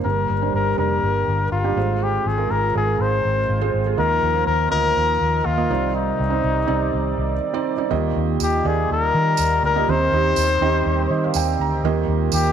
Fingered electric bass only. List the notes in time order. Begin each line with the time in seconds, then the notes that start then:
0.05 G1
0.30 G1
0.54 G1
0.78 F1
1.03 G1
1.28 G1
1.52 G1
1.76 G#1
2.25 G#1
2.50 G#1
2.75 G#1
2.99 G#1
3.25 G#1
3.49 G#1
3.74 G#1
3.98 D#2
4.23 D#2
4.47 D#2
4.72 D2
4.97 D#2
5.21 D#2
5.46 D#2
5.70 C2
6.20 C2
6.44 C2
6.69 C2
6.94 C2
7.18 C2
7.92 D#2
8.16 D#2
8.41 D#2
8.65 D#2
8.91 D#2
9.14 D#3
9.39 D#2
9.63 D2
9.88 D#2
10.12 D#2
10.37 D#2
10.61 D#2
10.86 D#2
11.10 D#3
11.35 D#2
11.59 D2
11.83 D#2
12.08 D#2
12.33 D#2